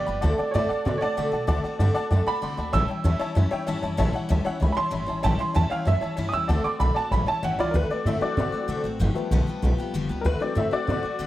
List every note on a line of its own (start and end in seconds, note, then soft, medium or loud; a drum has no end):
0.00 0.37 D5 medium
0.05 0.21 G1 medium
0.05 0.22 F3 soft
0.05 0.22 G3 soft
0.05 0.23 B3 medium
0.05 0.22 G4 medium
0.05 0.16 D5 medium
0.05 0.16 G5 medium
0.05 0.16 B5 medium
0.21 0.37 D2 loud
0.21 0.38 D3 medium
0.21 0.38 A3 medium
0.21 0.38 C4 medium
0.21 0.37 F#4 medium
0.21 0.31 D5 loud
0.21 0.32 F#5 medium
0.21 0.32 A5 loud
0.38 0.53 A3 soft
0.38 0.54 C4 soft
0.38 0.54 F#4 soft
0.38 0.48 D5 medium
0.38 0.54 D5 medium
0.38 0.48 F#5 medium
0.38 0.48 A5 medium
0.38 muted upright bass stroke medium
0.51 0.68 A2 medium
0.51 0.70 D3 medium
0.51 0.70 A3 medium
0.51 0.70 C4 medium
0.51 0.53 C#5 medium
0.51 0.63 D5 medium
0.51 0.64 F#5 medium
0.51 0.64 A5 medium
0.55 0.69 F#4 medium
0.55 1.00 D5 loud
0.69 0.85 A3 soft
0.69 0.86 C4 soft
0.69 0.86 F#4 medium
0.69 0.79 D5 loud
0.69 0.79 F#5 medium
0.69 0.79 A5 loud
0.69 muted upright bass stroke medium
0.85 0.99 B2 medium
0.85 1.01 D3 medium
0.85 1.02 A3 medium
0.85 1.01 C4 medium
0.85 1.00 F#4 medium
0.85 0.95 D5 medium
0.85 0.95 F#5 medium
0.85 0.95 A5 medium
0.98 1.17 F#4 medium
0.98 1.00 C#5 medium
0.98 1.11 D5 loud
1.02 1.16 A3 soft
1.02 1.17 C4 soft
1.02 1.62 D5 loud
1.02 1.11 F#5 medium
1.02 1.11 A5 loud
1.02 muted upright bass stroke medium
1.17 1.30 C3 medium
1.17 1.33 D3 medium
1.17 1.33 A3 medium
1.17 1.32 C4 medium
1.17 1.30 F#4 medium
1.17 1.26 D5 medium
1.17 1.27 F#5 medium
1.17 1.27 A5 medium
1.32 1.46 B2 medium
1.32 1.47 A3 soft
1.32 1.47 C4 soft
1.32 1.48 F#4 medium
1.32 1.42 D5 medium
1.32 1.42 F#5 medium
1.32 1.42 A5 medium
1.47 1.61 D2 loud
1.47 1.63 D3 medium
1.47 1.64 A3 medium
1.47 1.64 C4 medium
1.47 1.63 F#4 loud
1.47 1.57 D5 loud
1.47 1.58 F#5 loud
1.47 1.58 A5 loud
1.63 1.79 A3 soft
1.63 1.80 C4 medium
1.63 1.79 F#4 medium
1.63 1.73 D5 loud
1.63 1.73 F#5 medium
1.63 1.74 A5 loud
1.63 muted upright bass stroke medium
1.79 1.93 G2 medium
1.79 1.95 D3 medium
1.79 1.96 A3 medium
1.79 1.95 C4 loud
1.79 1.94 F#4 medium
1.79 1.89 D5 medium
1.79 1.89 F#5 medium
1.79 1.89 A5 medium
1.94 2.10 A3 medium
1.94 2.11 C4 medium
1.94 2.11 F#4 medium
1.94 2.04 D5 loud
1.94 2.05 F#5 loud
1.94 2.05 A5 loud
1.94 muted upright bass stroke medium
2.10 2.24 F#2 medium
2.10 2.26 D3 medium
2.10 2.27 A3 medium
2.10 2.27 C4 medium
2.10 2.25 F#4 medium
2.10 2.20 D5 medium
2.10 2.20 F#5 medium
2.10 2.21 A5 loud
2.26 2.41 A3 soft
2.26 2.42 C4 soft
2.26 2.42 F#4 medium
2.26 2.36 D5 loud
2.26 2.36 F#5 medium
2.26 2.36 A5 loud
2.26 2.73 B5 loud
2.26 muted upright bass stroke medium
2.42 2.56 C2 medium
2.42 2.58 D3 medium
2.42 2.58 A3 medium
2.42 2.57 C4 medium
2.42 2.56 F#4 medium
2.42 2.51 D5 medium
2.42 2.52 F#5 medium
2.42 2.52 C6 medium
2.57 2.71 D2 medium
2.57 2.73 A3 soft
2.57 2.74 C4 medium
2.57 2.73 F#4 medium
2.57 2.67 D5 medium
2.57 2.67 F#5 medium
2.57 2.68 A5 medium
2.73 2.87 A1 medium
2.73 2.89 A2 medium
2.73 2.89 E3 medium
2.73 2.89 G3 medium
2.73 2.89 C#4 medium
2.73 2.87 E4 medium
2.73 2.82 C#5 loud
2.73 2.83 E5 medium
2.73 2.83 A5 loud
2.73 3.64 E6 medium
2.88 3.04 G3 soft
2.88 3.04 C#4 soft
2.88 3.04 E4 soft
2.88 2.98 C#5 medium
2.88 2.99 E5 medium
2.88 2.99 G5 medium
3.04 3.18 E2 medium
3.04 3.20 A2 medium
3.04 3.20 E3 medium
3.04 3.20 G3 medium
3.04 3.20 C#4 medium
3.04 3.18 E4 medium
3.04 3.14 C#5 medium
3.04 3.14 E5 medium
3.04 3.15 A5 medium
3.19 3.35 G3 medium
3.19 3.36 C#4 medium
3.19 3.35 E4 medium
3.19 3.29 C#5 loud
3.19 3.30 E5 loud
3.19 3.30 A5 loud
3.19 muted upright bass stroke medium
3.35 3.49 F#2 medium
3.35 3.51 E3 medium
3.35 3.52 G3 medium
3.35 3.50 C#4 medium
3.35 3.49 E4 medium
3.35 3.45 C#5 medium
3.35 3.46 E5 medium
3.35 3.46 A5 medium
3.51 3.67 G3 medium
3.51 3.67 C#4 medium
3.51 3.67 E4 medium
3.51 3.61 C#5 loud
3.51 3.61 E5 loud
3.51 3.61 G5 loud
3.51 muted upright bass stroke medium
3.67 3.81 G2 medium
3.67 3.83 A2 medium
3.67 3.83 E3 medium
3.67 3.83 G3 medium
3.67 3.82 C#4 medium
3.67 3.81 E4 loud
3.67 3.76 C#5 medium
3.67 3.77 E5 medium
3.67 3.77 A5 loud
3.82 3.96 F#2 medium
3.82 3.97 G3 medium
3.82 3.97 C#4 medium
3.82 3.98 E4 medium
3.82 3.92 C#5 medium
3.82 3.92 E5 medium
3.82 3.93 A5 loud
3.97 4.12 A1 medium
3.97 4.14 A2 medium
3.97 4.14 E3 medium
3.97 4.14 G3 medium
3.97 4.13 C#4 medium
3.97 4.12 E4 medium
3.97 4.08 C#5 loud
3.97 4.08 E5 loud
3.97 4.08 A5 loud
4.13 4.28 G3 medium
4.13 4.29 C#4 soft
4.13 4.29 E4 medium
4.13 4.23 C#5 medium
4.13 4.24 E5 medium
4.13 4.24 F#5 medium
4.13 muted upright bass stroke medium
4.29 4.43 D2 medium
4.29 4.45 A2 loud
4.29 4.45 E3 medium
4.29 4.45 G3 medium
4.29 4.44 C#4 medium
4.29 4.43 E4 medium
4.29 4.39 C#5 medium
4.29 4.40 E5 medium
4.29 4.40 A5 loud
4.44 4.59 G3 medium
4.44 4.60 C#4 medium
4.44 4.61 E4 medium
4.44 4.55 C#5 loud
4.44 4.55 E5 loud
4.44 4.55 F#5 loud
4.60 4.74 C#2 medium
4.60 4.76 E3 medium
4.60 4.76 G3 medium
4.60 4.75 C#4 medium
4.60 4.74 E4 medium
4.60 4.70 C#5 medium
4.60 4.71 E5 medium
4.60 4.71 B5 loud
4.72 4.91 E4 medium
4.72 4.75 B5 medium
4.76 4.90 G3 soft
4.76 4.91 C#4 soft
4.76 4.86 C#5 loud
4.76 4.86 E5 medium
4.76 4.87 A5 loud
4.76 5.22 C6 loud
4.76 muted upright bass stroke medium
4.91 5.06 G1 medium
4.91 5.07 A2 medium
4.91 5.07 E3 medium
4.91 5.07 G3 medium
4.91 5.07 C#4 medium
4.91 5.05 E4 medium
4.91 5.02 C#5 medium
4.91 5.02 E5 medium
4.91 5.02 B5 medium
5.06 5.21 A1 medium
5.06 5.23 G3 soft
5.06 5.23 C#4 medium
5.06 5.23 E4 medium
5.06 5.17 C#5 medium
5.06 5.18 E5 medium
5.06 5.18 A5 medium
5.23 5.37 A1 medium
5.23 5.39 A2 medium
5.23 5.39 E3 medium
5.23 5.40 G3 medium
5.23 5.39 C#4 medium
5.23 5.38 E4 medium
5.23 5.33 C#5 loud
5.23 5.33 E5 loud
5.23 5.33 G5 loud
5.23 5.39 A5 medium
5.39 5.54 G3 soft
5.39 5.54 C#4 soft
5.39 5.55 E4 medium
5.39 5.48 C#5 medium
5.39 5.49 E5 medium
5.39 5.49 A5 medium
5.39 5.55 C6 medium
5.54 5.69 E2 medium
5.54 5.70 A2 medium
5.54 5.71 E3 medium
5.54 5.71 G3 medium
5.54 5.70 C#4 medium
5.54 5.69 E4 medium
5.54 5.64 C#5 medium
5.54 5.64 E5 medium
5.54 5.64 G5 medium
5.54 5.71 A5 medium
5.70 5.85 G3 soft
5.70 5.86 C#4 medium
5.70 5.86 E4 medium
5.70 5.80 C#5 loud
5.70 5.80 E5 loud
5.70 5.86 F5 medium
5.70 5.80 G5 loud
5.70 muted upright bass stroke medium
5.85 6.00 F#2 medium
5.85 6.01 E3 medium
5.85 6.02 G3 medium
5.85 6.01 C#4 medium
5.85 6.00 E4 medium
5.85 5.95 C#5 medium
5.85 5.96 E5 medium
5.85 6.17 E5 loud
5.85 5.96 A5 medium
6.01 6.17 G3 soft
6.01 6.17 C#4 medium
6.01 6.17 E4 medium
6.01 6.11 C#5 loud
6.01 6.11 E5 medium
6.01 6.11 A5 loud
6.01 muted upright bass stroke medium
6.16 6.31 G2 medium
6.16 6.33 A2 medium
6.16 6.33 E3 medium
6.16 6.33 G3 medium
6.16 6.32 C#4 medium
6.16 6.31 E4 medium
6.16 6.26 C#5 medium
6.16 6.27 E5 medium
6.16 6.27 A5 medium
6.29 6.48 E4 medium
6.29 6.42 C#5 medium
6.29 6.31 D#6 medium
6.33 6.47 E2 medium
6.33 6.49 G3 medium
6.33 6.49 C#4 soft
6.33 6.43 E5 medium
6.33 6.43 G5 medium
6.33 6.64 E6 medium
6.48 6.62 D2 medium
6.48 6.65 D3 medium
6.48 6.65 A3 medium
6.48 6.64 C4 medium
6.48 6.63 F#4 medium
6.48 6.58 D5 loud
6.48 6.58 F#5 medium
6.48 6.58 A5 loud
6.64 6.80 A3 soft
6.64 6.80 C4 soft
6.64 6.80 F#4 medium
6.64 6.74 D5 medium
6.64 6.74 F#5 medium
6.64 6.74 C6 medium
6.64 6.80 D6 medium
6.64 muted upright bass stroke medium
6.79 6.93 B1 medium
6.79 6.96 D3 medium
6.79 6.96 A3 medium
6.79 6.96 C4 medium
6.79 6.95 F#4 medium
6.79 6.89 D5 medium
6.79 6.89 F#5 medium
6.79 6.90 A5 medium
6.79 6.95 B5 medium
6.94 7.12 A3 soft
6.94 7.12 C4 medium
6.94 7.11 F#4 medium
6.94 7.05 D5 loud
6.94 7.05 F#5 medium
6.94 7.05 A5 loud
6.94 7.11 A5 medium
6.94 muted upright bass stroke medium
7.11 7.25 A1 medium
7.11 7.27 E3 medium
7.11 7.28 G3 medium
7.11 7.26 C#4 medium
7.11 7.25 E4 medium
7.11 7.21 C#5 medium
7.11 7.21 E5 medium
7.11 7.21 A5 medium
7.11 7.27 B5 medium
7.26 7.43 G3 soft
7.26 7.43 C#4 medium
7.26 7.42 E4 soft
7.26 7.36 C#5 loud
7.26 7.37 E5 medium
7.26 7.37 A5 loud
7.26 7.43 A5 medium
7.26 muted upright bass stroke medium
7.43 7.56 G1 medium
7.43 7.58 A2 medium
7.43 7.59 E3 medium
7.43 7.59 G3 medium
7.43 7.59 C#4 medium
7.43 7.57 E4 medium
7.43 7.52 C#5 medium
7.43 7.53 E5 medium
7.43 7.59 F#5 medium
7.43 7.53 G5 medium
7.58 7.72 C#2 medium
7.58 7.74 G3 soft
7.58 7.74 E4 medium
7.58 7.74 F4 medium
7.58 7.68 C#5 medium
7.58 7.75 D5 loud
7.58 7.68 E5 medium
7.58 7.68 B5 medium
7.71 7.87 D2 medium
7.71 7.90 D3 medium
7.71 7.90 A3 medium
7.71 7.73 A#4 medium
7.75 7.90 C4 medium
7.75 7.89 F#4 medium
7.75 7.90 B4 loud
7.90 8.05 A3 soft
7.90 8.06 C4 soft
7.90 8.06 F#4 medium
7.90 8.06 D5 medium
7.90 muted upright bass stroke medium
8.05 8.19 A2 medium
8.05 8.21 D3 medium
8.05 8.22 A3 medium
8.05 8.21 C4 medium
8.05 8.20 F#4 loud
8.05 8.21 E5 medium
8.21 8.95 E3 medium
8.21 8.96 F#3 medium
8.21 8.37 A3 soft
8.21 8.96 C4 medium
8.21 8.37 C4 medium
8.21 8.37 F#4 medium
8.21 8.80 F#4 medium
8.21 8.83 D5 loud
8.21 muted upright bass stroke medium
8.37 8.50 B2 loud
8.37 8.53 D3 medium
8.37 8.53 A3 medium
8.37 8.52 C4 medium
8.37 8.51 F#4 medium
8.52 8.67 A3 soft
8.52 8.68 C4 medium
8.52 8.68 F#4 medium
8.52 muted upright bass stroke medium
8.68 8.81 C3 medium
8.68 8.84 D3 medium
8.68 8.84 A3 medium
8.68 8.84 C4 medium
8.68 8.83 F#4 medium
8.84 8.97 A1 medium
8.84 9.00 A3 medium
8.84 9.00 C4 medium
8.84 9.00 F#4 medium
8.99 9.13 G1 medium
8.99 9.15 G2 medium
8.99 9.15 D3 medium
8.99 9.16 F3 loud
8.99 9.16 G3 medium
8.99 9.15 B3 medium
8.99 9.14 G4 medium
9.14 10.21 F3 medium
9.14 9.31 F3 soft
9.14 9.31 G3 medium
9.14 10.21 A3 soft
9.14 10.21 B3 medium
9.14 9.31 B3 medium
9.14 9.31 G4 medium
9.31 9.44 B1 medium
9.31 9.47 G2 loud
9.31 9.47 D3 medium
9.31 9.47 F3 loud
9.31 9.47 G3 loud
9.31 9.47 B3 loud
9.31 9.46 G4 loud
9.46 9.61 F3 medium
9.46 9.62 G3 medium
9.46 9.63 B3 medium
9.46 9.62 G4 medium
9.46 muted upright bass stroke medium
9.62 9.76 B1 medium
9.62 9.78 F3 medium
9.62 9.78 G3 medium
9.62 9.78 B3 medium
9.62 9.77 G4 medium
9.78 9.93 F3 medium
9.78 9.94 G3 medium
9.78 9.94 B3 medium
9.78 9.94 G4 medium
9.78 muted upright bass stroke medium
9.94 10.07 F1 loud
9.94 10.10 G2 medium
9.94 10.10 D3 medium
9.94 10.10 F3 medium
9.94 10.09 G3 medium
9.94 10.08 B3 loud
9.94 10.08 G4 medium
10.09 10.23 C#2 medium
10.09 10.24 F3 medium
10.09 10.25 G3 medium
10.09 10.25 B3 medium
10.09 10.25 G4 medium
10.21 10.38 D2 loud
10.21 10.41 D3 medium
10.21 10.24 A#4 medium
10.25 10.41 A3 medium
10.25 10.40 C4 medium
10.25 10.39 F#4 medium
10.25 10.41 B4 loud
10.40 10.85 E3 medium
10.40 10.86 F#3 medium
10.40 10.54 A3 soft
10.40 10.86 C4 medium
10.40 10.55 C4 soft
10.40 10.55 F#4 medium
10.40 10.57 D5 medium
10.40 muted upright bass stroke medium
10.55 10.70 A2 medium
10.55 10.72 D3 medium
10.55 10.72 A3 medium
10.55 10.71 C4 medium
10.55 10.70 F#4 medium
10.55 10.72 E5 medium
10.71 10.87 A3 soft
10.71 10.88 C4 soft
10.71 10.87 F#4 medium
10.71 11.27 F#4 loud
10.71 11.27 D5 loud
10.71 muted upright bass stroke medium
10.87 11.01 B2 medium
10.87 11.03 D3 medium
10.87 11.02 E3 medium
10.87 11.02 F#3 soft
10.87 11.04 A3 medium
10.87 11.02 C4 medium
10.87 11.03 C4 medium
10.87 11.02 F#4 medium
11.03 11.18 A3 soft
11.03 11.19 C4 soft
11.03 11.19 F#4 medium
11.03 muted upright bass stroke medium
11.19 11.27 C3 medium
11.19 11.27 D3 medium
11.19 11.27 A3 medium
11.19 11.27 C4 medium
11.19 11.27 F#4 loud